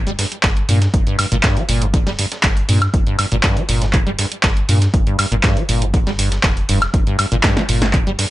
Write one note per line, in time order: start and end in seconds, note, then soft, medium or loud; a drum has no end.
0.07 0.16 G1 medium
0.07 0.11 G3 loud
0.07 closed hi-hat soft
0.18 0.26 G2 medium
0.18 snare medium
0.18 closed hi-hat medium
0.18 open hi-hat loud
0.32 closed hi-hat medium
0.43 0.63 G1 loud
0.43 kick loud
0.43 snare loud
0.43 clap loud
0.43 closed hi-hat medium
0.57 closed hi-hat soft
0.69 0.88 G2 medium
0.69 0.79 A#2 medium
0.69 closed hi-hat medium
0.69 open hi-hat medium
0.82 snare soft
0.82 closed hi-hat medium
0.94 1.03 G1 loud
0.94 kick loud
0.94 closed hi-hat medium
1.07 1.17 G2 medium
1.07 closed hi-hat soft
1.19 1.26 G2 medium
1.19 closed hi-hat medium
1.19 open hi-hat loud
1.19 high woodblock medium
1.32 1.41 G1 medium
1.32 1.36 A#2 loud
1.32 closed hi-hat soft
1.43 1.58 G2 loud
1.43 kick loud
1.43 snare loud
1.43 clap loud
1.43 closed hi-hat medium
1.57 1.63 G3 medium
1.57 closed hi-hat soft
1.69 2.01 G1 medium
1.69 1.83 A#2 medium
1.69 closed hi-hat medium
1.69 open hi-hat medium
1.82 1.86 G2 medium
1.82 closed hi-hat medium
1.94 1.98 D3 medium
1.94 kick loud
1.94 closed hi-hat medium
2.07 2.16 G1 medium
2.07 2.11 G3 loud
2.07 snare medium
2.07 closed hi-hat soft
2.19 2.26 G2 medium
2.19 closed hi-hat medium
2.19 open hi-hat loud
2.32 snare medium
2.32 closed hi-hat medium
2.43 2.63 G1 loud
2.43 kick loud
2.43 snare loud
2.43 clap loud
2.43 closed hi-hat medium
2.57 closed hi-hat soft
2.69 2.88 G2 medium
2.69 2.79 A#2 medium
2.69 closed hi-hat medium
2.69 open hi-hat medium
2.82 snare soft
2.82 closed hi-hat medium
2.82 high woodblock medium
2.94 3.03 G1 loud
2.94 kick loud
2.94 closed hi-hat medium
3.07 3.17 G2 medium
3.07 closed hi-hat soft
3.19 3.26 G2 medium
3.19 closed hi-hat medium
3.19 open hi-hat loud
3.19 high woodblock medium
3.32 3.41 G1 medium
3.32 3.36 A#2 loud
3.32 closed hi-hat soft
3.43 3.58 G2 loud
3.43 kick loud
3.43 snare loud
3.43 clap loud
3.43 closed hi-hat medium
3.43 closed hi-hat soft
3.57 3.63 G3 medium
3.57 closed hi-hat soft
3.69 4.01 G1 medium
3.69 3.83 A#2 medium
3.69 closed hi-hat medium
3.69 open hi-hat medium
3.82 3.86 G2 medium
3.82 snare soft
3.82 closed hi-hat soft
3.93 3.98 D3 medium
3.93 kick loud
3.93 clap medium
3.93 closed hi-hat soft
3.93 closed hi-hat medium
4.07 4.16 G1 medium
4.07 4.11 G3 loud
4.07 closed hi-hat soft
4.19 4.26 G2 medium
4.19 snare medium
4.19 closed hi-hat medium
4.19 open hi-hat loud
4.32 closed hi-hat medium
4.43 4.63 G1 loud
4.43 kick loud
4.43 snare loud
4.43 clap loud
4.43 closed hi-hat medium
4.57 closed hi-hat soft
4.69 4.88 G2 medium
4.69 4.79 A#2 medium
4.69 closed hi-hat medium
4.69 open hi-hat medium
4.82 snare soft
4.82 closed hi-hat medium
4.94 5.03 G1 loud
4.94 kick loud
4.94 closed hi-hat medium
4.94 closed hi-hat soft
5.07 5.17 G2 medium
5.07 closed hi-hat soft
5.19 5.26 G2 medium
5.19 closed hi-hat medium
5.19 open hi-hat loud
5.19 high woodblock medium
5.32 5.41 G1 medium
5.32 5.36 A#2 loud
5.32 closed hi-hat soft
5.43 5.58 G2 loud
5.43 kick loud
5.43 snare loud
5.43 clap loud
5.43 closed hi-hat medium
5.43 closed hi-hat soft
5.57 5.63 G3 medium
5.57 closed hi-hat soft
5.69 6.01 G1 medium
5.69 5.83 A#2 medium
5.69 closed hi-hat medium
5.69 open hi-hat medium
5.82 5.86 G2 medium
5.82 closed hi-hat soft
5.94 5.98 D3 medium
5.94 kick loud
5.94 closed hi-hat medium
5.94 closed hi-hat soft
6.07 6.39 G1 medium
6.07 6.11 G3 loud
6.07 snare medium
6.07 closed hi-hat soft
6.19 6.29 G2 medium
6.19 closed hi-hat medium
6.19 open hi-hat loud
6.32 snare medium
6.32 closed hi-hat soft
6.43 6.63 F1 loud
6.43 kick loud
6.43 snare loud
6.43 clap loud
6.43 closed hi-hat medium
6.43 closed hi-hat soft
6.57 closed hi-hat soft
6.69 6.88 F1 medium
6.69 6.79 G2 loud
6.69 closed hi-hat medium
6.69 open hi-hat medium
6.82 snare soft
6.82 closed hi-hat soft
6.82 high woodblock medium
6.94 7.03 G1 loud
6.94 kick loud
6.94 closed hi-hat medium
6.94 closed hi-hat soft
7.07 7.17 G2 medium
7.07 closed hi-hat soft
7.19 7.26 G2 medium
7.19 closed hi-hat medium
7.19 open hi-hat loud
7.19 high woodblock medium
7.32 7.41 G1 medium
7.32 7.36 A#2 loud
7.32 closed hi-hat soft
7.43 7.58 G2 loud
7.43 kick loud
7.43 snare loud
7.43 snare medium
7.43 clap loud
7.43 closed hi-hat medium
7.43 closed hi-hat soft
7.57 7.63 G3 medium
7.57 snare medium
7.57 closed hi-hat soft
7.69 8.01 G1 medium
7.69 7.83 A#2 medium
7.69 closed hi-hat medium
7.69 open hi-hat medium
7.82 7.86 G2 medium
7.82 snare soft
7.82 snare medium
7.82 closed hi-hat soft
7.93 7.98 D3 medium
7.93 kick loud
7.93 clap medium
7.93 closed hi-hat medium
7.93 closed hi-hat soft
8.07 8.16 G1 medium
8.07 8.11 G3 loud
8.07 closed hi-hat soft
8.19 8.26 G2 medium
8.19 snare medium
8.19 closed hi-hat medium
8.19 open hi-hat loud